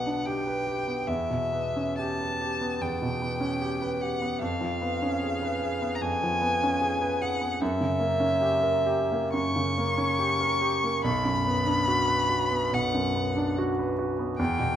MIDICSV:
0, 0, Header, 1, 3, 480
1, 0, Start_track
1, 0, Key_signature, 2, "minor"
1, 0, Tempo, 815217
1, 634, Time_signature, 4, 2, 24, 8
1, 634, Tempo, 907716
1, 1114, Tempo, 826446
1, 1594, Tempo, 800000
1, 4954, Tempo, 931677
1, 5434, Tempo, 859599
1, 5914, Tempo, 845070
1, 7834, Tempo, 816327
1, 8526, End_track
2, 0, Start_track
2, 0, Title_t, "Violin"
2, 0, Program_c, 0, 40
2, 0, Note_on_c, 0, 78, 54
2, 151, Note_on_c, 0, 79, 55
2, 160, Note_off_c, 0, 78, 0
2, 631, Note_on_c, 0, 76, 55
2, 639, Note_off_c, 0, 79, 0
2, 1112, Note_off_c, 0, 76, 0
2, 1115, Note_on_c, 0, 81, 58
2, 1598, Note_on_c, 0, 79, 52
2, 1607, Note_off_c, 0, 81, 0
2, 2316, Note_on_c, 0, 78, 53
2, 2325, Note_off_c, 0, 79, 0
2, 2556, Note_off_c, 0, 78, 0
2, 2563, Note_on_c, 0, 77, 66
2, 3478, Note_on_c, 0, 82, 44
2, 3487, Note_off_c, 0, 77, 0
2, 3517, Note_on_c, 0, 80, 70
2, 3526, Note_off_c, 0, 82, 0
2, 4236, Note_on_c, 0, 78, 58
2, 4245, Note_off_c, 0, 80, 0
2, 4473, Note_on_c, 0, 76, 66
2, 4482, Note_off_c, 0, 78, 0
2, 5428, Note_off_c, 0, 76, 0
2, 5431, Note_on_c, 0, 85, 74
2, 6372, Note_off_c, 0, 85, 0
2, 6392, Note_on_c, 0, 83, 85
2, 7354, Note_on_c, 0, 78, 63
2, 7362, Note_off_c, 0, 83, 0
2, 7832, Note_off_c, 0, 78, 0
2, 8307, Note_on_c, 0, 79, 84
2, 8526, Note_off_c, 0, 79, 0
2, 8526, End_track
3, 0, Start_track
3, 0, Title_t, "Grand piano"
3, 0, Program_c, 1, 0
3, 0, Control_c, 1, 64, 127
3, 0, Note_on_c, 1, 35, 28
3, 0, Note_on_c, 1, 47, 26
3, 0, Note_on_c, 1, 59, 29
3, 0, Note_on_c, 1, 62, 26
3, 0, Note_on_c, 1, 67, 29
3, 0, Note_on_c, 1, 71, 29
3, 38, Note_off_c, 1, 62, 0
3, 38, Note_on_c, 1, 62, 28
3, 108, Note_off_c, 1, 59, 0
3, 157, Note_off_c, 1, 67, 0
3, 157, Note_on_c, 1, 67, 31
3, 227, Note_off_c, 1, 62, 0
3, 278, Note_off_c, 1, 71, 0
3, 278, Note_on_c, 1, 71, 32
3, 346, Note_off_c, 1, 67, 0
3, 394, Note_on_c, 1, 67, 26
3, 466, Note_off_c, 1, 71, 0
3, 515, Note_on_c, 1, 59, 27
3, 586, Note_off_c, 1, 67, 0
3, 610, Note_off_c, 1, 35, 0
3, 634, Note_on_c, 1, 40, 34
3, 635, Note_off_c, 1, 59, 0
3, 642, Control_c, 1, 64, 0
3, 646, Note_off_c, 1, 47, 0
3, 743, Control_c, 1, 64, 127
3, 753, Note_on_c, 1, 47, 26
3, 871, Note_on_c, 1, 59, 29
3, 948, Note_off_c, 1, 47, 0
3, 998, Note_on_c, 1, 61, 26
3, 1067, Note_off_c, 1, 59, 0
3, 1118, Note_on_c, 1, 67, 30
3, 1192, Note_off_c, 1, 61, 0
3, 1241, Note_on_c, 1, 71, 29
3, 1314, Note_off_c, 1, 67, 0
3, 1365, Note_on_c, 1, 67, 29
3, 1430, Note_off_c, 1, 71, 0
3, 1478, Note_on_c, 1, 59, 31
3, 1549, Note_off_c, 1, 67, 0
3, 1571, Note_off_c, 1, 40, 0
3, 1594, Note_on_c, 1, 40, 32
3, 1666, Note_off_c, 1, 59, 0
3, 1720, Note_on_c, 1, 47, 29
3, 1839, Note_on_c, 1, 59, 31
3, 1909, Note_off_c, 1, 47, 0
3, 1950, Note_on_c, 1, 61, 32
3, 2028, Note_off_c, 1, 59, 0
3, 2078, Note_on_c, 1, 67, 34
3, 2143, Note_off_c, 1, 61, 0
3, 2197, Note_on_c, 1, 71, 34
3, 2267, Note_off_c, 1, 67, 0
3, 2313, Note_on_c, 1, 67, 31
3, 2387, Note_off_c, 1, 71, 0
3, 2437, Note_on_c, 1, 59, 30
3, 2506, Note_off_c, 1, 67, 0
3, 2531, Note_off_c, 1, 40, 0
3, 2555, Note_on_c, 1, 41, 36
3, 2556, Note_off_c, 1, 59, 0
3, 2563, Control_c, 1, 64, 0
3, 2671, Control_c, 1, 64, 127
3, 2673, Note_on_c, 1, 53, 28
3, 2796, Note_on_c, 1, 59, 32
3, 2867, Note_off_c, 1, 53, 0
3, 2921, Note_on_c, 1, 61, 32
3, 2988, Note_off_c, 1, 59, 0
3, 3048, Note_on_c, 1, 68, 31
3, 3110, Note_off_c, 1, 61, 0
3, 3162, Note_on_c, 1, 71, 31
3, 3233, Note_off_c, 1, 68, 0
3, 3281, Note_on_c, 1, 68, 31
3, 3350, Note_off_c, 1, 71, 0
3, 3399, Note_on_c, 1, 59, 31
3, 3469, Note_off_c, 1, 68, 0
3, 3490, Note_off_c, 1, 41, 0
3, 3517, Note_on_c, 1, 41, 36
3, 3589, Note_off_c, 1, 59, 0
3, 3647, Note_on_c, 1, 53, 29
3, 3758, Note_on_c, 1, 59, 35
3, 3835, Note_off_c, 1, 53, 0
3, 3886, Note_on_c, 1, 61, 32
3, 3951, Note_off_c, 1, 59, 0
3, 3997, Note_on_c, 1, 68, 36
3, 4074, Note_off_c, 1, 61, 0
3, 4117, Note_on_c, 1, 71, 37
3, 4189, Note_off_c, 1, 68, 0
3, 4239, Note_on_c, 1, 68, 35
3, 4308, Note_off_c, 1, 71, 0
3, 4354, Note_on_c, 1, 59, 31
3, 4427, Note_off_c, 1, 68, 0
3, 4450, Note_off_c, 1, 41, 0
3, 4472, Note_off_c, 1, 59, 0
3, 4477, Note_on_c, 1, 42, 43
3, 4481, Control_c, 1, 64, 0
3, 4584, Control_c, 1, 64, 127
3, 4591, Note_on_c, 1, 49, 32
3, 4706, Note_on_c, 1, 58, 36
3, 4780, Note_off_c, 1, 49, 0
3, 4827, Note_on_c, 1, 61, 31
3, 4901, Note_off_c, 1, 58, 0
3, 4953, Note_on_c, 1, 67, 36
3, 5019, Note_off_c, 1, 61, 0
3, 5066, Note_on_c, 1, 70, 35
3, 5138, Note_off_c, 1, 67, 0
3, 5187, Note_on_c, 1, 67, 36
3, 5263, Note_off_c, 1, 70, 0
3, 5319, Note_on_c, 1, 58, 39
3, 5384, Note_off_c, 1, 67, 0
3, 5413, Note_off_c, 1, 42, 0
3, 5429, Note_on_c, 1, 42, 39
3, 5512, Note_off_c, 1, 58, 0
3, 5556, Note_on_c, 1, 49, 34
3, 5678, Note_on_c, 1, 58, 38
3, 5747, Note_off_c, 1, 49, 0
3, 5787, Note_on_c, 1, 61, 38
3, 5866, Note_off_c, 1, 58, 0
3, 5906, Note_on_c, 1, 67, 37
3, 5980, Note_off_c, 1, 61, 0
3, 6030, Note_on_c, 1, 70, 37
3, 6100, Note_off_c, 1, 67, 0
3, 6148, Note_on_c, 1, 67, 36
3, 6223, Note_off_c, 1, 70, 0
3, 6275, Note_on_c, 1, 58, 35
3, 6342, Note_off_c, 1, 67, 0
3, 6368, Note_off_c, 1, 42, 0
3, 6390, Note_on_c, 1, 35, 50
3, 6394, Note_off_c, 1, 58, 0
3, 6402, Control_c, 1, 64, 0
3, 6486, Control_c, 1, 64, 127
3, 6509, Note_on_c, 1, 42, 33
3, 6631, Note_on_c, 1, 59, 38
3, 6700, Note_off_c, 1, 42, 0
3, 6744, Note_on_c, 1, 62, 33
3, 6820, Note_off_c, 1, 59, 0
3, 6865, Note_on_c, 1, 66, 35
3, 6936, Note_off_c, 1, 62, 0
3, 6981, Note_on_c, 1, 71, 40
3, 7058, Note_off_c, 1, 66, 0
3, 7103, Note_on_c, 1, 66, 39
3, 7179, Note_off_c, 1, 71, 0
3, 7223, Note_on_c, 1, 59, 40
3, 7302, Note_off_c, 1, 66, 0
3, 7330, Note_off_c, 1, 35, 0
3, 7348, Note_on_c, 1, 35, 39
3, 7424, Note_off_c, 1, 59, 0
3, 7470, Note_on_c, 1, 42, 37
3, 7590, Note_on_c, 1, 59, 37
3, 7665, Note_off_c, 1, 42, 0
3, 7712, Note_on_c, 1, 62, 36
3, 7782, Note_off_c, 1, 59, 0
3, 7835, Note_on_c, 1, 66, 42
3, 7903, Note_off_c, 1, 62, 0
3, 7956, Note_on_c, 1, 71, 38
3, 8025, Note_off_c, 1, 66, 0
3, 8073, Note_on_c, 1, 66, 36
3, 8145, Note_off_c, 1, 71, 0
3, 8191, Note_on_c, 1, 59, 35
3, 8263, Note_off_c, 1, 66, 0
3, 8284, Note_off_c, 1, 35, 0
3, 8310, Note_off_c, 1, 59, 0
3, 8310, Note_on_c, 1, 40, 51
3, 8321, Control_c, 1, 64, 0
3, 8403, Control_c, 1, 64, 127
3, 8429, Note_on_c, 1, 47, 30
3, 8526, Note_off_c, 1, 40, 0
3, 8526, Note_off_c, 1, 47, 0
3, 8526, End_track
0, 0, End_of_file